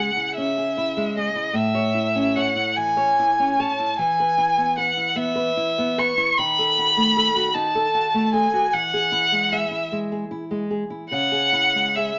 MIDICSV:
0, 0, Header, 1, 3, 480
1, 0, Start_track
1, 0, Key_signature, 4, "major"
1, 0, Tempo, 803213
1, 929, Time_signature, 6, 3, 24, 8
1, 3820, Tempo, 784314
1, 6220, Tempo, 809717
1, 6700, Tempo, 860832
1, 7294, End_track
2, 0, Start_track
2, 0, Title_t, "Violin"
2, 0, Program_c, 0, 40
2, 0, Note_on_c, 0, 78, 46
2, 209, Note_off_c, 0, 78, 0
2, 213, Note_on_c, 0, 76, 54
2, 683, Note_off_c, 0, 76, 0
2, 704, Note_on_c, 0, 75, 46
2, 930, Note_on_c, 0, 76, 57
2, 939, Note_off_c, 0, 75, 0
2, 1412, Note_on_c, 0, 78, 50
2, 1421, Note_off_c, 0, 76, 0
2, 1650, Note_on_c, 0, 80, 59
2, 1659, Note_off_c, 0, 78, 0
2, 2150, Note_on_c, 0, 81, 56
2, 2159, Note_off_c, 0, 80, 0
2, 2379, Note_off_c, 0, 81, 0
2, 2382, Note_on_c, 0, 80, 68
2, 2842, Note_off_c, 0, 80, 0
2, 2861, Note_on_c, 0, 78, 55
2, 3087, Note_on_c, 0, 76, 62
2, 3096, Note_off_c, 0, 78, 0
2, 3581, Note_on_c, 0, 85, 58
2, 3590, Note_off_c, 0, 76, 0
2, 3814, Note_on_c, 0, 83, 69
2, 3823, Note_off_c, 0, 85, 0
2, 4521, Note_on_c, 0, 81, 59
2, 4531, Note_off_c, 0, 83, 0
2, 5006, Note_off_c, 0, 81, 0
2, 5009, Note_on_c, 0, 80, 57
2, 5253, Note_on_c, 0, 78, 72
2, 5262, Note_off_c, 0, 80, 0
2, 5734, Note_on_c, 0, 76, 53
2, 5743, Note_off_c, 0, 78, 0
2, 5975, Note_off_c, 0, 76, 0
2, 6689, Note_on_c, 0, 78, 67
2, 7164, Note_on_c, 0, 76, 45
2, 7172, Note_off_c, 0, 78, 0
2, 7294, Note_off_c, 0, 76, 0
2, 7294, End_track
3, 0, Start_track
3, 0, Title_t, "Nylon-string guitar"
3, 0, Program_c, 1, 24
3, 0, Note_on_c, 1, 49, 35
3, 0, Note_on_c, 1, 68, 32
3, 99, Note_on_c, 1, 64, 31
3, 177, Note_off_c, 1, 68, 0
3, 224, Note_on_c, 1, 61, 28
3, 295, Note_off_c, 1, 64, 0
3, 344, Note_on_c, 1, 68, 31
3, 416, Note_off_c, 1, 61, 0
3, 462, Note_on_c, 1, 64, 28
3, 534, Note_off_c, 1, 68, 0
3, 579, Note_on_c, 1, 56, 30
3, 650, Note_off_c, 1, 64, 0
3, 698, Note_on_c, 1, 68, 32
3, 766, Note_off_c, 1, 56, 0
3, 809, Note_on_c, 1, 64, 33
3, 883, Note_off_c, 1, 68, 0
3, 908, Note_off_c, 1, 49, 0
3, 916, Note_on_c, 1, 45, 37
3, 927, Note_off_c, 1, 64, 0
3, 1044, Note_on_c, 1, 73, 34
3, 1163, Note_on_c, 1, 64, 33
3, 1240, Note_off_c, 1, 73, 0
3, 1288, Note_on_c, 1, 61, 35
3, 1363, Note_off_c, 1, 64, 0
3, 1416, Note_on_c, 1, 73, 37
3, 1488, Note_off_c, 1, 61, 0
3, 1529, Note_on_c, 1, 64, 30
3, 1615, Note_off_c, 1, 73, 0
3, 1659, Note_on_c, 1, 52, 33
3, 1733, Note_off_c, 1, 64, 0
3, 1774, Note_on_c, 1, 73, 36
3, 1859, Note_off_c, 1, 52, 0
3, 1908, Note_on_c, 1, 64, 37
3, 1977, Note_off_c, 1, 73, 0
3, 2029, Note_on_c, 1, 61, 34
3, 2104, Note_off_c, 1, 64, 0
3, 2150, Note_on_c, 1, 73, 41
3, 2222, Note_off_c, 1, 61, 0
3, 2268, Note_on_c, 1, 64, 37
3, 2340, Note_off_c, 1, 73, 0
3, 2358, Note_off_c, 1, 45, 0
3, 2382, Note_on_c, 1, 52, 45
3, 2387, Note_off_c, 1, 64, 0
3, 2510, Note_on_c, 1, 71, 31
3, 2617, Note_on_c, 1, 64, 35
3, 2694, Note_off_c, 1, 71, 0
3, 2734, Note_on_c, 1, 59, 37
3, 2805, Note_off_c, 1, 64, 0
3, 2854, Note_on_c, 1, 71, 38
3, 2922, Note_off_c, 1, 59, 0
3, 2970, Note_on_c, 1, 64, 32
3, 3042, Note_off_c, 1, 71, 0
3, 3081, Note_on_c, 1, 59, 38
3, 3160, Note_off_c, 1, 64, 0
3, 3200, Note_on_c, 1, 71, 36
3, 3279, Note_off_c, 1, 59, 0
3, 3329, Note_on_c, 1, 64, 34
3, 3401, Note_off_c, 1, 71, 0
3, 3455, Note_on_c, 1, 59, 36
3, 3527, Note_off_c, 1, 64, 0
3, 3574, Note_on_c, 1, 71, 37
3, 3651, Note_off_c, 1, 59, 0
3, 3691, Note_on_c, 1, 64, 35
3, 3769, Note_off_c, 1, 71, 0
3, 3791, Note_off_c, 1, 52, 0
3, 3814, Note_off_c, 1, 64, 0
3, 3816, Note_on_c, 1, 51, 40
3, 3940, Note_on_c, 1, 69, 36
3, 4059, Note_on_c, 1, 66, 35
3, 4129, Note_off_c, 1, 69, 0
3, 4174, Note_on_c, 1, 57, 34
3, 4247, Note_off_c, 1, 66, 0
3, 4295, Note_on_c, 1, 69, 41
3, 4363, Note_off_c, 1, 57, 0
3, 4409, Note_on_c, 1, 66, 35
3, 4484, Note_off_c, 1, 69, 0
3, 4527, Note_on_c, 1, 63, 37
3, 4601, Note_off_c, 1, 66, 0
3, 4652, Note_on_c, 1, 69, 39
3, 4721, Note_off_c, 1, 63, 0
3, 4770, Note_on_c, 1, 66, 36
3, 4845, Note_off_c, 1, 69, 0
3, 4891, Note_on_c, 1, 57, 39
3, 4964, Note_off_c, 1, 66, 0
3, 5009, Note_on_c, 1, 69, 37
3, 5084, Note_off_c, 1, 57, 0
3, 5131, Note_on_c, 1, 66, 37
3, 5204, Note_off_c, 1, 69, 0
3, 5229, Note_off_c, 1, 51, 0
3, 5253, Note_off_c, 1, 66, 0
3, 5255, Note_on_c, 1, 52, 38
3, 5377, Note_on_c, 1, 68, 35
3, 5488, Note_on_c, 1, 64, 39
3, 5570, Note_off_c, 1, 68, 0
3, 5612, Note_on_c, 1, 56, 33
3, 5685, Note_off_c, 1, 64, 0
3, 5736, Note_on_c, 1, 68, 35
3, 5806, Note_off_c, 1, 56, 0
3, 5852, Note_on_c, 1, 64, 30
3, 5928, Note_off_c, 1, 68, 0
3, 5979, Note_on_c, 1, 56, 34
3, 6046, Note_off_c, 1, 64, 0
3, 6101, Note_on_c, 1, 68, 32
3, 6171, Note_off_c, 1, 56, 0
3, 6217, Note_on_c, 1, 64, 32
3, 6291, Note_off_c, 1, 68, 0
3, 6335, Note_on_c, 1, 56, 33
3, 6406, Note_off_c, 1, 64, 0
3, 6452, Note_on_c, 1, 68, 33
3, 6526, Note_off_c, 1, 56, 0
3, 6569, Note_on_c, 1, 64, 30
3, 6648, Note_off_c, 1, 68, 0
3, 6675, Note_off_c, 1, 52, 0
3, 6694, Note_on_c, 1, 49, 43
3, 6696, Note_off_c, 1, 64, 0
3, 6809, Note_on_c, 1, 68, 27
3, 6925, Note_on_c, 1, 64, 31
3, 7005, Note_off_c, 1, 68, 0
3, 7049, Note_on_c, 1, 56, 30
3, 7124, Note_off_c, 1, 64, 0
3, 7173, Note_on_c, 1, 68, 32
3, 7246, Note_off_c, 1, 56, 0
3, 7294, Note_off_c, 1, 49, 0
3, 7294, Note_off_c, 1, 68, 0
3, 7294, End_track
0, 0, End_of_file